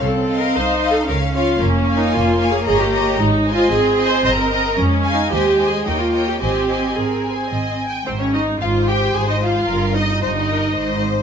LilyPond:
<<
  \new Staff \with { instrumentName = "Violin section" } { \time 3/4 \key bes \dorian \tempo 4 = 112 r8 f''4 f''8 f''8 f''8 | \key aes \major r8 aes''4 aes''8 bes''8 bes''8 | r8 aes''4 aes''8 bes''8 bes''8 | r8 aes''8 aes''8 aes''8 g''8 g''8 |
aes''8 aes''4 aes''4 aes''8 | c''16 des''16 ees''8 f''8 g''8 aes''16 ees''16 f''8~ | f''8 ees''8 ees''4. r8 | }
  \new Staff \with { instrumentName = "Violin section" } { \time 3/4 \key bes \dorian r8 <ees'' f''>4 <ees'' f''>8 <des'' f''>8 <des'' f''>8 | \key aes \major r8 <des'' f''>4 <des'' f''>8 <des'' ees''>8 <des'' ees''>8 | r8 <c'' ees''>4 <c'' ees''>8 ees''8 ees''8 | r8 <f'' aes''>8 <c'' ees''>8 <c'' ees''>8 <des'' ees''>8 <des'' ees''>8 |
<c'' ees''>8 <c'' ees''>8 \tuplet 3/2 { bes'4 c''8 ees''4 g''8 } | r4 c''2 | bes'8 ees''8 c''8 bes'8 c''4 | }
  \new Staff \with { instrumentName = "Viola section" } { \time 3/4 \key bes \dorian \tuplet 3/2 { a'4 bes'8 c''4 a'8 } bes'8 f'8 | \key aes \major \tuplet 3/2 { des'4 ees'8 f'4 aes'8 } aes'16 g'8. | \tuplet 3/2 { ees'4 f'8 aes'4 c''8 } c''16 bes'8. | \tuplet 3/2 { des'4 ees'8 g'4 aes'8 } ees'16 f'8 g'16 |
g'4 aes'4 r4 | c'16 des'16 ees'8 f'8 g'8 aes'16 ees'16 f'8~ | f'8 ees'8 ees'4. r8 | }
  \new Staff \with { instrumentName = "Cello section" } { \clef bass \time 3/4 \key bes \dorian c'4 ees'4 des'4 | \key aes \major bes2. | aes4 c'2 | aes2 bes4 |
c'2~ c'8 r8 | aes,4 aes,4 aes,4 | g,4 g,4 aes,4 | }
  \new Staff \with { instrumentName = "Double bass section" } { \clef bass \time 3/4 \key bes \dorian c,4 c,4 des,4 | \key aes \major f,,4 f,,4 g,,4 | aes,,4 aes,,4 g,,4 | f,4 ees,4 ees,4 |
aes,,4 aes,,4 aes,,4 | aes,,4 aes,,4 aes,,4 | g,,4 g,,4 aes,,4 | }
>>